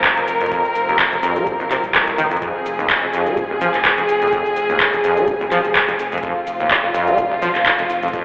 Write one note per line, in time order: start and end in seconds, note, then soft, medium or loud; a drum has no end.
0.00 0.23 F1 loud
0.00 0.08 G#2 medium
0.00 8.25 F3 medium
0.00 8.25 C4 medium
0.00 2.41 A#4 medium
0.00 kick loud
0.00 clap loud
0.04 closed hi-hat medium
0.04 shaker soft
0.17 0.21 F2 medium
0.17 closed hi-hat soft
0.17 shaker soft
0.28 0.58 F1 medium
0.28 open hi-hat loud
0.28 shaker medium
0.41 0.47 F2 medium
0.41 closed hi-hat soft
0.41 shaker soft
0.46 closed hi-hat medium
0.52 0.62 F2 loud
0.52 kick loud
0.52 closed hi-hat medium
0.52 shaker soft
0.65 shaker soft
0.75 1.06 F1 loud
0.75 open hi-hat loud
0.75 shaker medium
0.88 0.97 D#2 medium
0.88 shaker soft
0.99 1.04 F1 medium
0.99 kick loud
0.99 clap loud
0.99 closed hi-hat medium
0.99 shaker soft
1.12 1.20 F1 medium
1.12 1.16 F2 medium
1.12 shaker soft
1.23 1.38 F2 loud
1.23 open hi-hat loud
1.23 shaker medium
1.36 1.48 G#3 medium
1.36 closed hi-hat medium
1.36 shaker soft
1.47 1.78 D#1 loud
1.47 1.54 F1 medium
1.47 kick loud
1.47 closed hi-hat medium
1.47 shaker soft
1.60 1.63 D#2 medium
1.60 shaker soft
1.71 1.75 C3 loud
1.71 clap soft
1.71 open hi-hat loud
1.71 shaker medium
1.84 2.13 C2 medium
1.84 kick medium
1.84 closed hi-hat soft
1.84 shaker soft
1.94 2.02 D#2 loud
1.94 kick loud
1.94 clap loud
1.94 closed hi-hat medium
1.94 shaker soft
2.07 2.11 F1 loud
2.07 closed hi-hat soft
2.07 shaker soft
2.18 2.28 F1 medium
2.18 2.25 D#3 loud
2.18 open hi-hat loud
2.18 shaker medium
2.31 2.37 F2 medium
2.31 closed hi-hat soft
2.31 shaker soft
2.37 closed hi-hat medium
2.42 2.53 F2 loud
2.42 6.22 G#4 medium
2.42 kick loud
2.42 closed hi-hat medium
2.42 shaker soft
2.66 2.97 F1 medium
2.66 open hi-hat loud
2.66 shaker medium
2.79 2.88 D#2 medium
2.79 shaker soft
2.90 2.94 F1 medium
2.90 kick loud
2.90 clap loud
2.90 closed hi-hat medium
2.90 shaker soft
3.03 3.10 F1 medium
3.03 3.06 F2 medium
3.13 3.28 F2 loud
3.13 open hi-hat loud
3.13 shaker medium
3.26 3.39 G#3 medium
3.26 closed hi-hat soft
3.26 shaker soft
3.37 3.68 D#1 loud
3.37 3.44 F1 medium
3.37 kick loud
3.37 closed hi-hat medium
3.37 shaker soft
3.50 3.54 D#2 medium
3.61 3.68 F3 loud
3.61 open hi-hat loud
3.61 shaker medium
3.74 4.04 F1 loud
3.74 clap soft
3.74 closed hi-hat soft
3.74 shaker soft
3.85 3.89 G#2 medium
3.85 kick loud
3.85 clap loud
3.85 closed hi-hat medium
3.85 shaker soft
3.98 4.02 F2 medium
3.98 closed hi-hat soft
3.98 shaker soft
4.09 4.40 F1 medium
4.09 open hi-hat loud
4.09 shaker medium
4.22 4.28 F2 medium
4.22 closed hi-hat soft
4.22 shaker soft
4.27 closed hi-hat medium
4.33 4.43 F2 loud
4.33 kick loud
4.33 closed hi-hat medium
4.33 shaker soft
4.46 shaker soft
4.56 4.87 F1 loud
4.56 open hi-hat loud
4.56 shaker medium
4.69 4.78 D#2 medium
4.69 shaker soft
4.80 4.85 F1 medium
4.80 kick loud
4.80 clap loud
4.80 closed hi-hat medium
4.80 shaker soft
4.93 5.01 F1 medium
4.93 4.97 F2 medium
4.93 shaker soft
5.04 5.19 F2 loud
5.04 open hi-hat loud
5.04 shaker medium
5.17 5.29 G#3 medium
5.17 closed hi-hat medium
5.17 shaker soft
5.28 5.59 D#1 loud
5.28 5.35 F1 medium
5.28 kick loud
5.28 closed hi-hat medium
5.28 shaker soft
5.41 5.44 D#2 medium
5.41 shaker soft
5.51 5.59 F3 loud
5.51 clap soft
5.51 open hi-hat loud
5.51 shaker medium
5.65 5.94 F1 loud
5.65 closed hi-hat soft
5.65 shaker soft
5.75 5.80 G#2 medium
5.75 kick loud
5.75 clap loud
5.75 closed hi-hat medium
5.75 shaker soft
5.88 5.92 F2 medium
5.88 closed hi-hat medium
5.88 shaker soft
5.99 6.30 F1 medium
5.99 open hi-hat loud
5.99 shaker medium
6.12 6.18 F2 medium
6.12 closed hi-hat soft
6.12 shaker soft
6.18 closed hi-hat medium
6.23 6.34 F2 loud
6.23 8.25 F4 medium
6.23 kick loud
6.23 closed hi-hat medium
6.23 shaker soft
6.47 6.78 F1 loud
6.47 open hi-hat loud
6.47 shaker medium
6.60 6.69 D#2 medium
6.60 shaker soft
6.71 6.75 F1 medium
6.71 kick loud
6.71 clap loud
6.71 closed hi-hat medium
6.71 shaker soft
6.84 6.91 F1 medium
6.84 6.87 F2 medium
6.94 7.09 F2 loud
6.94 open hi-hat loud
6.94 shaker medium
7.07 7.20 G#3 medium
7.07 closed hi-hat medium
7.07 shaker soft
7.18 7.49 D#1 loud
7.18 7.25 F1 medium
7.18 kick loud
7.18 closed hi-hat medium
7.18 shaker soft
7.31 7.35 D#2 medium
7.42 7.49 F3 loud
7.42 open hi-hat loud
7.42 shaker medium
7.55 7.85 F1 loud
7.55 clap soft
7.55 closed hi-hat medium
7.55 shaker soft
7.66 7.70 G#2 medium
7.66 kick loud
7.66 clap loud
7.66 closed hi-hat medium
7.66 shaker soft
7.79 7.83 F2 medium
7.79 closed hi-hat medium
7.79 shaker soft
7.90 8.20 F1 medium
7.90 open hi-hat loud
7.90 shaker medium
8.03 8.09 F2 medium
8.03 closed hi-hat soft
8.03 shaker soft
8.08 closed hi-hat medium
8.13 8.24 F2 loud
8.13 kick loud
8.13 closed hi-hat medium
8.13 shaker soft